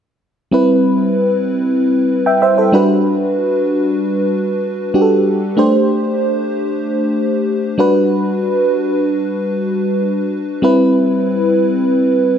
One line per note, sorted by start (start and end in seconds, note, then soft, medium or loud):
0.51 2.69 G3 medium
0.51 2.70 C4 medium
0.51 2.70 E4 medium
0.51 2.08 B4 medium
2.26 2.41 E5 soft
2.26 2.41 G5 medium
2.42 2.57 C5 medium
2.42 2.57 E5 medium
2.58 2.88 A4 soft
2.58 2.88 C5 soft
2.72 4.90 G3 medium
2.72 4.90 D4 medium
2.72 4.91 F#4 medium
2.72 4.91 B4 medium
4.94 5.58 G3 soft
4.94 5.56 D4 soft
4.94 5.58 F#4 soft
4.94 5.01 G4 soft
5.02 5.61 A4 medium
5.57 7.74 A3 medium
5.57 7.75 D4 medium
5.57 7.75 G4 medium
5.57 7.76 C5 medium
7.78 10.27 G3 medium
7.78 10.27 D4 medium
7.78 10.28 F#4 medium
7.78 10.28 B4 medium
10.62 12.38 G3 medium
10.62 12.38 C4 medium
10.62 12.38 E4 medium
10.62 12.38 B4 medium